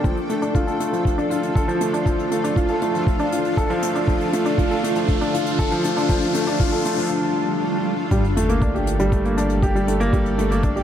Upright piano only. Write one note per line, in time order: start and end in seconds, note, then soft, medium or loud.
0.04 0.16 F3 medium
0.30 0.42 A3 medium
0.42 0.54 D4 medium
0.55 0.67 F4 medium
0.67 0.79 A4 medium
0.80 0.92 A3 medium
0.93 1.00 F3 medium
1.18 1.30 D4 medium
1.30 1.42 F4 medium
1.55 1.67 A4 medium
1.68 1.80 F3 medium
1.81 1.88 A3 medium
1.93 2.01 D4 medium
2.06 2.18 F3 medium
2.31 2.43 A3 medium
2.44 2.56 D4 medium
2.57 2.69 F4 medium
2.69 2.81 A4 medium
2.82 2.94 A3 medium
2.94 3.02 F3 medium
3.20 3.32 D4 medium
3.32 3.44 F4 medium
3.57 3.69 A4 medium
3.70 3.82 F3 medium
3.83 3.90 A3 medium
3.95 4.02 D4 medium
4.08 4.20 F3 medium
4.33 4.45 A3 medium
4.46 4.58 D4 medium
4.58 4.70 F4 medium
4.71 4.83 A4 medium
4.84 4.96 A3 medium
4.96 5.03 F3 medium
5.21 5.33 D4 medium
5.34 5.46 F4 medium
5.59 5.71 A4 medium
5.72 5.84 F3 medium
5.84 5.92 A3 medium
5.97 6.04 D4 medium
6.09 6.21 F3 medium
6.35 6.47 A3 medium
6.47 6.59 D4 medium
6.60 6.72 F4 medium
6.72 6.84 A4 medium
6.85 6.97 A3 medium
6.97 7.05 F3 medium
8.11 8.23 G3 medium
8.37 8.49 A3 medium
8.49 8.61 A#3 medium
8.62 8.74 D4 medium
8.75 8.82 G4 medium
9.00 9.12 G3 medium
9.12 9.24 A3 medium
9.25 9.37 A#3 medium
9.38 9.49 D4 medium
9.63 9.75 G4 medium
9.75 9.87 G3 medium
9.88 10.00 A3 medium
10.00 10.12 A#3 loud
10.13 10.25 G3 medium
10.38 10.50 A3 medium
10.51 10.63 A#3 medium
10.63 10.75 D4 medium
10.76 10.83 G4 medium